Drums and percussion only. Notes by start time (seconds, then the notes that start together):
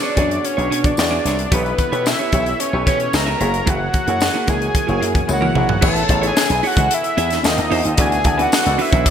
0.17 kick, closed hi-hat
0.31 closed hi-hat
0.45 closed hi-hat
0.59 closed hi-hat
0.72 closed hi-hat
0.84 kick, closed hi-hat
0.97 snare, tambourine
1.26 snare, closed hi-hat
1.39 closed hi-hat
1.52 kick, closed hi-hat
1.66 closed hi-hat
1.78 kick, closed hi-hat
1.93 closed hi-hat
2.06 snare, tambourine
2.19 closed hi-hat
2.32 kick, closed hi-hat
2.46 closed hi-hat
2.60 closed hi-hat
2.87 kick, closed hi-hat
3.00 closed hi-hat
3.13 snare, tambourine
3.41 closed hi-hat
3.54 closed hi-hat
3.67 kick, closed hi-hat
3.94 kick, closed hi-hat
4.07 closed hi-hat
4.20 snare, tambourine
4.47 kick, closed hi-hat
4.62 closed hi-hat
4.75 kick, closed hi-hat
4.89 closed hi-hat
5.02 closed hi-hat
5.15 kick, closed hi-hat
5.29 high tom, tambourine
5.42 mid tom
5.55 mid tom
5.69 floor tom
5.82 kick, crash
5.96 closed hi-hat
6.09 kick, closed hi-hat
6.23 closed hi-hat
6.37 snare, tambourine
6.50 closed hi-hat
6.63 open hi-hat
6.77 kick, closed hi-hat
6.91 closed hi-hat
7.04 closed hi-hat
7.18 closed hi-hat
7.30 snare, closed hi-hat
7.44 snare, tambourine
7.58 closed hi-hat
7.71 open hi-hat
7.85 closed hi-hat
7.97 kick, closed hi-hat
8.12 closed hi-hat
8.24 kick, closed hi-hat
8.39 closed hi-hat
8.52 snare, tambourine
8.66 closed hi-hat
8.79 open hi-hat
8.93 kick, closed hi-hat
9.06 kick, closed hi-hat